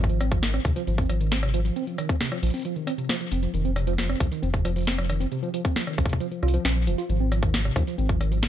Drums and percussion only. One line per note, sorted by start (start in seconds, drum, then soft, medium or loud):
0.04 kick medium
0.10 closed hi-hat soft
0.21 cross-stick medium
0.21 closed hi-hat loud
0.32 kick loud
0.32 closed hi-hat medium
0.43 snare loud
0.43 closed hi-hat medium
0.54 cross-stick medium
0.54 closed hi-hat soft
0.65 kick loud
0.65 closed hi-hat medium
0.76 closed hi-hat medium
0.87 closed hi-hat medium
0.98 kick loud
0.98 closed hi-hat soft
1.02 closed hi-hat soft
1.06 cross-stick soft
1.06 closed hi-hat soft
1.09 closed hi-hat loud
1.21 closed hi-hat medium
1.32 snare loud
1.32 closed hi-hat medium
1.43 cross-stick medium
1.43 closed hi-hat soft
1.54 closed hi-hat loud
1.65 closed hi-hat medium
1.76 closed hi-hat medium
1.87 closed hi-hat soft
1.98 cross-stick soft
1.98 closed hi-hat loud
2.09 kick loud
2.09 closed hi-hat medium
2.21 snare loud
2.21 closed hi-hat medium
2.32 cross-stick medium
2.32 closed hi-hat soft
2.43 closed hi-hat medium
2.47 closed hi-hat medium
2.50 closed hi-hat medium
2.54 closed hi-hat medium
2.57 closed hi-hat soft
2.59 closed hi-hat soft
2.61 closed hi-hat soft
2.65 closed hi-hat medium
2.76 closed hi-hat soft
2.87 cross-stick soft
2.87 closed hi-hat loud
2.98 closed hi-hat medium
3.09 snare loud
3.09 closed hi-hat medium
3.21 closed hi-hat soft
3.32 closed hi-hat loud
3.43 closed hi-hat medium
3.54 closed hi-hat medium
3.65 closed hi-hat soft
3.76 cross-stick medium
3.76 closed hi-hat medium
3.87 closed hi-hat medium
3.98 snare loud
3.98 closed hi-hat medium
4.09 cross-stick medium
4.09 closed hi-hat soft
4.20 kick loud
4.20 closed hi-hat medium
4.32 closed hi-hat medium
4.43 closed hi-hat medium
4.54 kick loud
4.54 closed hi-hat soft
4.65 cross-stick soft
4.65 closed hi-hat medium
4.76 closed hi-hat medium
4.78 closed hi-hat soft
4.81 closed hi-hat soft
4.83 closed hi-hat soft
4.85 snare loud
4.85 closed hi-hat soft
4.87 closed hi-hat medium
4.98 cross-stick medium
4.98 closed hi-hat soft
5.10 cross-stick medium
5.10 closed hi-hat medium
5.21 closed hi-hat medium
5.32 closed hi-hat soft
5.43 closed hi-hat soft
5.54 closed hi-hat medium
5.65 kick loud
5.65 closed hi-hat medium
5.76 snare loud
5.76 closed hi-hat soft
5.87 cross-stick soft
5.87 closed hi-hat soft
5.98 kick loud
5.98 closed hi-hat medium
6.06 kick medium
6.06 closed hi-hat medium
6.13 kick medium
6.20 closed hi-hat soft
6.32 closed hi-hat soft
6.43 cross-stick soft
6.48 closed hi-hat medium
6.54 closed hi-hat medium
6.65 snare loud
6.65 closed hi-hat medium
6.76 closed hi-hat soft
6.87 closed hi-hat medium
6.98 closed hi-hat medium
7.10 closed hi-hat soft
7.32 cross-stick soft
7.32 closed hi-hat medium
7.43 kick loud
7.43 closed hi-hat medium
7.54 snare loud
7.54 closed hi-hat soft
7.65 cross-stick soft
7.65 closed hi-hat soft
7.76 kick loud
7.76 closed hi-hat medium
7.87 closed hi-hat medium
7.98 closed hi-hat soft
8.09 kick loud
8.09 closed hi-hat soft
8.21 cross-stick soft
8.21 closed hi-hat medium
8.32 closed hi-hat soft
8.43 snare loud
8.43 closed hi-hat soft